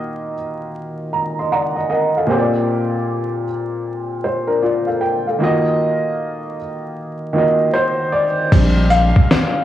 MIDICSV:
0, 0, Header, 1, 4, 480
1, 0, Start_track
1, 0, Key_signature, -2, "major"
1, 0, Tempo, 779221
1, 1410, Time_signature, 4, 2, 24, 8
1, 5940, End_track
2, 0, Start_track
2, 0, Title_t, "Upright piano"
2, 0, Program_c, 0, 0
2, 0, Control_c, 0, 64, 127
2, 0, Note_on_c, 0, 51, 80
2, 0, Note_on_c, 0, 58, 77
2, 0, Note_on_c, 0, 65, 73
2, 0, Note_on_c, 0, 66, 73
2, 0, Note_on_c, 0, 75, 93
2, 198, Note_off_c, 0, 51, 0
2, 202, Note_off_c, 0, 58, 0
2, 206, Note_off_c, 0, 65, 0
2, 209, Note_off_c, 0, 66, 0
2, 214, Note_off_c, 0, 75, 0
2, 696, Note_on_c, 0, 82, 60
2, 857, Note_on_c, 0, 84, 50
2, 861, Note_on_c, 0, 75, 49
2, 917, Note_off_c, 0, 82, 0
2, 933, Note_off_c, 0, 84, 0
2, 935, Note_off_c, 0, 75, 0
2, 937, Note_on_c, 0, 78, 74
2, 938, Note_on_c, 0, 82, 74
2, 942, Note_on_c, 0, 74, 58
2, 1076, Note_off_c, 0, 78, 0
2, 1083, Note_on_c, 0, 75, 59
2, 1159, Note_off_c, 0, 75, 0
2, 1162, Note_off_c, 0, 82, 0
2, 1164, Note_off_c, 0, 74, 0
2, 1168, Note_on_c, 0, 75, 71
2, 1171, Note_on_c, 0, 78, 63
2, 1172, Note_on_c, 0, 70, 57
2, 1315, Note_off_c, 0, 78, 0
2, 1316, Note_off_c, 0, 70, 0
2, 1335, Note_on_c, 0, 77, 53
2, 1339, Note_on_c, 0, 69, 48
2, 1392, Note_off_c, 0, 75, 0
2, 1396, Note_on_c, 0, 46, 76
2, 1402, Note_on_c, 0, 58, 74
2, 1410, Note_on_c, 0, 60, 77
2, 1416, Note_on_c, 0, 67, 80
2, 1417, Control_c, 0, 64, 0
2, 1426, Note_on_c, 0, 72, 70
2, 1467, Note_on_c, 0, 74, 83
2, 1469, Note_off_c, 0, 72, 0
2, 1544, Control_c, 0, 64, 127
2, 1557, Note_off_c, 0, 77, 0
2, 1559, Note_off_c, 0, 69, 0
2, 2117, Note_off_c, 0, 46, 0
2, 2121, Note_off_c, 0, 58, 0
2, 2125, Note_off_c, 0, 60, 0
2, 2128, Note_off_c, 0, 67, 0
2, 2153, Note_off_c, 0, 74, 0
2, 2613, Note_on_c, 0, 72, 60
2, 2757, Note_off_c, 0, 72, 0
2, 2757, Note_on_c, 0, 70, 67
2, 2761, Note_on_c, 0, 62, 52
2, 2843, Note_off_c, 0, 70, 0
2, 2845, Note_off_c, 0, 62, 0
2, 2849, Note_on_c, 0, 74, 66
2, 2854, Note_on_c, 0, 65, 66
2, 2995, Note_off_c, 0, 74, 0
2, 2997, Note_off_c, 0, 65, 0
2, 2998, Note_on_c, 0, 77, 53
2, 3002, Note_on_c, 0, 69, 48
2, 3084, Note_off_c, 0, 77, 0
2, 3086, Note_off_c, 0, 69, 0
2, 3086, Note_on_c, 0, 79, 65
2, 3090, Note_on_c, 0, 70, 45
2, 3233, Note_off_c, 0, 79, 0
2, 3235, Note_off_c, 0, 70, 0
2, 3247, Note_on_c, 0, 77, 50
2, 3250, Note_on_c, 0, 69, 49
2, 3318, Note_on_c, 0, 51, 75
2, 3325, Note_on_c, 0, 58, 78
2, 3333, Note_on_c, 0, 65, 74
2, 3338, Control_c, 0, 64, 0
2, 3342, Note_on_c, 0, 66, 71
2, 3349, Note_on_c, 0, 75, 94
2, 3461, Control_c, 0, 64, 127
2, 3473, Note_off_c, 0, 77, 0
2, 3474, Note_off_c, 0, 69, 0
2, 4038, Note_off_c, 0, 51, 0
2, 4042, Note_off_c, 0, 58, 0
2, 4046, Note_off_c, 0, 65, 0
2, 4051, Note_off_c, 0, 66, 0
2, 4054, Note_off_c, 0, 75, 0
2, 4515, Note_on_c, 0, 51, 80
2, 4520, Note_on_c, 0, 58, 68
2, 4530, Note_on_c, 0, 65, 67
2, 4537, Note_on_c, 0, 66, 62
2, 4546, Note_on_c, 0, 75, 77
2, 4765, Note_on_c, 0, 72, 88
2, 5005, Note_on_c, 0, 74, 97
2, 5015, Note_off_c, 0, 72, 0
2, 5071, Note_off_c, 0, 51, 0
2, 5074, Note_off_c, 0, 58, 0
2, 5079, Note_off_c, 0, 65, 0
2, 5082, Note_off_c, 0, 66, 0
2, 5087, Note_off_c, 0, 75, 0
2, 5251, Note_on_c, 0, 55, 58
2, 5252, Note_on_c, 0, 60, 57
2, 5257, Control_c, 0, 64, 0
2, 5259, Note_on_c, 0, 62, 72
2, 5353, Control_c, 0, 64, 127
2, 5484, Note_on_c, 0, 77, 110
2, 5502, Note_off_c, 0, 74, 0
2, 5940, Note_off_c, 0, 55, 0
2, 5940, Note_off_c, 0, 60, 0
2, 5940, Note_off_c, 0, 62, 0
2, 5940, Note_off_c, 0, 77, 0
2, 5940, End_track
3, 0, Start_track
3, 0, Title_t, "Sub bass"
3, 0, Program_c, 1, 38
3, 5251, Note_on_c, 1, 34, 106
3, 5619, Note_off_c, 1, 34, 0
3, 5940, End_track
4, 0, Start_track
4, 0, Title_t, "Drums"
4, 5249, Note_on_c, 9, 36, 124
4, 5250, Note_on_c, 9, 49, 100
4, 5257, Note_on_c, 9, 42, 87
4, 5310, Note_off_c, 9, 36, 0
4, 5312, Note_off_c, 9, 49, 0
4, 5319, Note_off_c, 9, 42, 0
4, 5484, Note_on_c, 9, 42, 58
4, 5546, Note_off_c, 9, 42, 0
4, 5643, Note_on_c, 9, 36, 89
4, 5704, Note_off_c, 9, 36, 0
4, 5734, Note_on_c, 9, 38, 119
4, 5741, Note_on_c, 9, 42, 75
4, 5795, Note_off_c, 9, 38, 0
4, 5802, Note_off_c, 9, 42, 0
4, 5940, End_track
0, 0, End_of_file